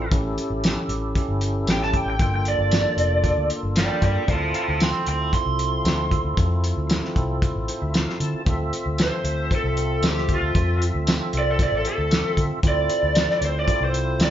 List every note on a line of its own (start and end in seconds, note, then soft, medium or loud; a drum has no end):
0.10 0.35 A1 loud
0.10 2.16 C#4 medium
0.10 2.16 E4 medium
0.10 2.17 G4 medium
0.10 2.17 A4 medium
0.10 kick loud
0.10 closed hi-hat medium
0.38 closed hi-hat soft
0.50 0.74 A1 medium
0.64 snare loud
0.64 closed hi-hat medium
0.64 tambourine loud
0.88 1.12 A1 medium
0.88 closed hi-hat medium
1.15 kick medium
1.15 closed hi-hat medium
1.28 1.64 G1 medium
1.41 closed hi-hat medium
1.67 2.03 A1 medium
1.67 snare loud
1.67 closed hi-hat medium
1.67 tambourine loud
1.72 1.83 G5 medium
1.82 1.97 A5 medium
1.82 snare soft
1.94 2.08 G5 medium
1.94 kick medium
1.94 closed hi-hat medium
2.06 2.18 A1 medium
2.10 2.21 G5 medium
2.19 2.55 G1 medium
2.19 4.24 A#3 medium
2.19 4.25 D4 medium
2.19 4.25 F4 medium
2.19 4.26 A4 medium
2.19 2.34 G5 medium
2.19 kick loud
2.19 closed hi-hat medium
2.35 2.47 G5 medium
2.45 3.48 D5 medium
2.45 closed hi-hat medium
2.58 2.82 G1 medium
2.71 snare loud
2.71 closed hi-hat medium
2.71 tambourine loud
2.97 3.33 F1 medium
2.97 closed hi-hat medium
3.24 kick medium
3.24 closed hi-hat medium
3.37 3.49 D2 medium
3.50 closed hi-hat medium
3.63 3.87 G1 medium
3.76 4.03 D5 medium
3.76 4.03 G5 medium
3.76 snare loud
3.76 closed hi-hat medium
3.76 tambourine loud
4.02 4.14 G2 medium
4.02 4.28 D5 medium
4.02 4.29 G5 medium
4.02 kick medium
4.02 closed hi-hat medium
4.16 muted fingered electric bass stroke soft
4.26 4.52 D2 loud
4.26 8.41 C4 medium
4.26 8.41 E4 medium
4.26 8.42 F4 medium
4.26 8.43 A4 medium
4.26 4.54 F5 medium
4.26 kick loud
4.26 closed hi-hat medium
4.31 4.55 A5 medium
4.54 4.80 F5 medium
4.54 4.81 A5 medium
4.54 closed hi-hat medium
4.68 4.92 D2 medium
4.80 5.06 G5 medium
4.80 5.08 C6 medium
4.80 snare loud
4.80 closed hi-hat medium
4.80 tambourine loud
5.06 5.31 D2 medium
5.06 5.32 G5 medium
5.06 5.33 C6 medium
5.06 closed hi-hat medium
5.33 6.86 C6 medium
5.33 kick medium
5.33 closed hi-hat medium
5.46 5.81 C2 medium
5.59 closed hi-hat medium
5.84 6.20 D2 medium
5.84 snare loud
5.84 closed hi-hat medium
5.84 tambourine medium
6.11 kick medium
6.11 closed hi-hat soft
6.24 6.36 D2 medium
6.37 6.73 F2 medium
6.37 kick loud
6.37 closed hi-hat medium
6.64 closed hi-hat medium
6.77 7.00 D2 medium
6.90 snare loud
6.90 closed hi-hat medium
6.90 tambourine loud
7.05 snare soft
7.16 7.51 C2 medium
7.16 kick medium
7.16 closed hi-hat medium
7.42 kick medium
7.42 closed hi-hat medium
7.56 7.67 A1 medium
7.68 7.81 C5 medium
7.68 closed hi-hat medium
7.82 8.05 D2 medium
7.82 7.93 E5 medium
7.94 8.19 F5 medium
7.94 snare medium
7.94 closed hi-hat medium
7.94 tambourine loud
8.10 snare soft
8.20 8.32 D3 medium
8.20 8.45 A5 medium
8.20 closed hi-hat medium
8.33 muted fingered electric bass stroke soft
8.45 8.70 D2 medium
8.45 12.59 C4 medium
8.45 12.60 F4 medium
8.45 12.61 A4 medium
8.45 12.59 E5 medium
8.45 kick loud
8.45 closed hi-hat medium
8.73 closed hi-hat medium
8.86 9.09 D2 medium
8.98 9.51 C5 medium
8.98 snare loud
8.98 closed hi-hat medium
8.98 tambourine loud
9.24 9.48 D2 medium
9.24 closed hi-hat medium
9.51 kick medium
9.51 closed hi-hat medium
9.55 10.03 A4 medium
9.64 9.99 C2 medium
9.77 closed hi-hat medium
10.02 10.38 D2 medium
10.02 snare medium
10.02 closed hi-hat medium
10.02 tambourine loud
10.09 10.31 G4 medium
10.17 snare soft
10.29 kick medium
10.29 closed hi-hat medium
10.34 10.82 F4 medium
10.41 10.53 D2 medium
10.55 10.90 F2 medium
10.55 kick loud
10.55 closed hi-hat medium
10.82 closed hi-hat medium
10.95 11.18 D2 medium
11.07 snare loud
11.07 closed hi-hat medium
11.07 tambourine loud
11.33 11.69 C2 medium
11.33 closed hi-hat medium
11.39 11.49 D5 medium
11.51 11.61 A4 medium
11.59 11.74 D5 medium
11.59 kick medium
11.59 closed hi-hat medium
11.72 11.84 A1 medium
11.77 11.87 A4 medium
11.85 12.38 A4 medium
11.85 closed hi-hat medium
11.98 12.22 D2 medium
12.11 snare loud
12.11 closed hi-hat medium
12.11 tambourine loud
12.37 12.49 D3 medium
12.37 kick medium
12.37 closed hi-hat medium
12.51 muted fingered electric bass stroke soft
12.63 12.87 D2 medium
12.63 14.30 C4 medium
12.63 14.30 E4 medium
12.63 14.30 F4 medium
12.63 14.30 A4 medium
12.63 kick loud
12.63 closed hi-hat medium
12.68 13.42 D5 loud
12.90 closed hi-hat medium
13.03 13.26 D2 medium
13.15 snare loud
13.15 closed hi-hat medium
13.15 tambourine loud
13.30 snare soft
13.41 13.65 D2 medium
13.41 13.59 C5 medium
13.41 closed hi-hat medium
13.59 13.82 D5 medium
13.68 kick medium
13.68 closed hi-hat medium
13.81 14.16 C2 medium
13.81 14.21 C5 medium
13.94 closed hi-hat medium
14.19 14.30 D2 loud
14.19 14.30 D5 loud
14.19 snare loud
14.19 closed hi-hat medium
14.19 tambourine loud